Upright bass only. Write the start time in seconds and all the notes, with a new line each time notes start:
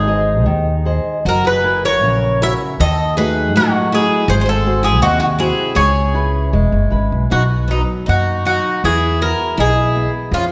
Already playing: G#1
0.47 D#2
1.25 F#1
2.03 A#1
2.80 D#2
3.55 A2
4.28 G#1
5.02 D#2
5.76 C#2
6.53 E1
6.72 F#1
6.92 G#1
7.12 B1
7.32 B1
8.08 F#2
8.84 E2
9.58 B1
10.31 F2